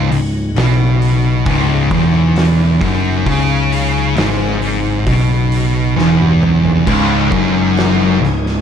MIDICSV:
0, 0, Header, 1, 5, 480
1, 0, Start_track
1, 0, Key_signature, 4, "minor"
1, 0, Tempo, 899550
1, 1744, Time_signature, 4, 2, 24, 8
1, 4595, End_track
2, 0, Start_track
2, 0, Title_t, "Tonewheel organ"
2, 0, Program_c, 0, 16
2, 0, Note_on_c, 0, 49, 65
2, 0, Note_on_c, 0, 54, 62
2, 0, Note_on_c, 0, 63, 70
2, 3641, Note_off_c, 0, 63, 0
2, 3642, Note_off_c, 0, 49, 0
2, 3643, Note_off_c, 0, 54, 0
2, 3660, Note_on_c, 0, 63, 74
2, 3662, Note_on_c, 0, 49, 66
2, 3662, Note_on_c, 0, 56, 62
2, 4595, Note_off_c, 0, 49, 0
2, 4595, Note_off_c, 0, 56, 0
2, 4595, Note_off_c, 0, 63, 0
2, 4595, End_track
3, 0, Start_track
3, 0, Title_t, "Distorted electric guitar"
3, 0, Program_c, 1, 30
3, 0, Note_on_c, 1, 37, 111
3, 54, Note_off_c, 1, 37, 0
3, 61, Note_on_c, 1, 37, 74
3, 254, Note_off_c, 1, 37, 0
3, 299, Note_on_c, 1, 47, 103
3, 774, Note_off_c, 1, 47, 0
3, 780, Note_on_c, 1, 37, 99
3, 1014, Note_off_c, 1, 37, 0
3, 1021, Note_on_c, 1, 40, 97
3, 1495, Note_off_c, 1, 40, 0
3, 1501, Note_on_c, 1, 42, 102
3, 1735, Note_off_c, 1, 42, 0
3, 1741, Note_on_c, 1, 49, 101
3, 2215, Note_off_c, 1, 49, 0
3, 2221, Note_on_c, 1, 44, 101
3, 2695, Note_off_c, 1, 44, 0
3, 2700, Note_on_c, 1, 47, 101
3, 3175, Note_off_c, 1, 47, 0
3, 3181, Note_on_c, 1, 40, 97
3, 3655, Note_off_c, 1, 40, 0
3, 3660, Note_on_c, 1, 37, 108
3, 3894, Note_off_c, 1, 37, 0
3, 3904, Note_on_c, 1, 42, 103
3, 4376, Note_off_c, 1, 42, 0
3, 4382, Note_on_c, 1, 37, 71
3, 4575, Note_off_c, 1, 37, 0
3, 4595, End_track
4, 0, Start_track
4, 0, Title_t, "Picked electric bass"
4, 0, Program_c, 2, 34
4, 62, Note_on_c, 2, 25, 76
4, 286, Note_off_c, 2, 25, 0
4, 298, Note_on_c, 2, 35, 94
4, 760, Note_off_c, 2, 35, 0
4, 780, Note_on_c, 2, 25, 97
4, 1005, Note_off_c, 2, 25, 0
4, 1020, Note_on_c, 2, 28, 87
4, 1481, Note_off_c, 2, 28, 0
4, 1500, Note_on_c, 2, 30, 91
4, 1725, Note_off_c, 2, 30, 0
4, 1742, Note_on_c, 2, 37, 84
4, 2201, Note_off_c, 2, 37, 0
4, 2221, Note_on_c, 2, 32, 92
4, 2681, Note_off_c, 2, 32, 0
4, 2705, Note_on_c, 2, 35, 96
4, 3163, Note_off_c, 2, 35, 0
4, 3186, Note_on_c, 2, 28, 93
4, 3643, Note_off_c, 2, 28, 0
4, 3666, Note_on_c, 2, 25, 95
4, 3888, Note_off_c, 2, 25, 0
4, 3906, Note_on_c, 2, 30, 96
4, 4363, Note_off_c, 2, 30, 0
4, 4380, Note_on_c, 2, 25, 84
4, 4595, Note_off_c, 2, 25, 0
4, 4595, End_track
5, 0, Start_track
5, 0, Title_t, "Drums"
5, 63, Note_on_c, 9, 46, 54
5, 116, Note_off_c, 9, 46, 0
5, 301, Note_on_c, 9, 46, 77
5, 310, Note_on_c, 9, 38, 110
5, 355, Note_off_c, 9, 46, 0
5, 363, Note_off_c, 9, 38, 0
5, 543, Note_on_c, 9, 46, 55
5, 596, Note_off_c, 9, 46, 0
5, 780, Note_on_c, 9, 46, 75
5, 781, Note_on_c, 9, 36, 108
5, 833, Note_off_c, 9, 46, 0
5, 834, Note_off_c, 9, 36, 0
5, 1018, Note_on_c, 9, 46, 55
5, 1020, Note_on_c, 9, 36, 110
5, 1072, Note_off_c, 9, 46, 0
5, 1073, Note_off_c, 9, 36, 0
5, 1260, Note_on_c, 9, 46, 80
5, 1268, Note_on_c, 9, 38, 106
5, 1313, Note_off_c, 9, 46, 0
5, 1322, Note_off_c, 9, 38, 0
5, 1501, Note_on_c, 9, 36, 103
5, 1501, Note_on_c, 9, 46, 57
5, 1555, Note_off_c, 9, 36, 0
5, 1555, Note_off_c, 9, 46, 0
5, 1742, Note_on_c, 9, 36, 100
5, 1743, Note_on_c, 9, 46, 82
5, 1795, Note_off_c, 9, 36, 0
5, 1796, Note_off_c, 9, 46, 0
5, 1987, Note_on_c, 9, 46, 61
5, 2040, Note_off_c, 9, 46, 0
5, 2223, Note_on_c, 9, 46, 74
5, 2232, Note_on_c, 9, 38, 109
5, 2277, Note_off_c, 9, 46, 0
5, 2285, Note_off_c, 9, 38, 0
5, 2465, Note_on_c, 9, 46, 55
5, 2518, Note_off_c, 9, 46, 0
5, 2703, Note_on_c, 9, 46, 77
5, 2704, Note_on_c, 9, 36, 95
5, 2757, Note_off_c, 9, 36, 0
5, 2757, Note_off_c, 9, 46, 0
5, 2945, Note_on_c, 9, 46, 58
5, 2998, Note_off_c, 9, 46, 0
5, 3194, Note_on_c, 9, 38, 65
5, 3247, Note_off_c, 9, 38, 0
5, 3309, Note_on_c, 9, 48, 62
5, 3362, Note_off_c, 9, 48, 0
5, 3431, Note_on_c, 9, 45, 90
5, 3484, Note_off_c, 9, 45, 0
5, 3550, Note_on_c, 9, 43, 75
5, 3603, Note_off_c, 9, 43, 0
5, 3667, Note_on_c, 9, 36, 109
5, 3670, Note_on_c, 9, 49, 118
5, 3670, Note_on_c, 9, 57, 59
5, 3720, Note_off_c, 9, 36, 0
5, 3723, Note_off_c, 9, 49, 0
5, 3723, Note_off_c, 9, 57, 0
5, 3905, Note_on_c, 9, 36, 110
5, 3959, Note_off_c, 9, 36, 0
5, 4147, Note_on_c, 9, 57, 59
5, 4155, Note_on_c, 9, 38, 106
5, 4200, Note_off_c, 9, 57, 0
5, 4209, Note_off_c, 9, 38, 0
5, 4395, Note_on_c, 9, 38, 33
5, 4448, Note_off_c, 9, 38, 0
5, 4515, Note_on_c, 9, 38, 34
5, 4568, Note_off_c, 9, 38, 0
5, 4595, End_track
0, 0, End_of_file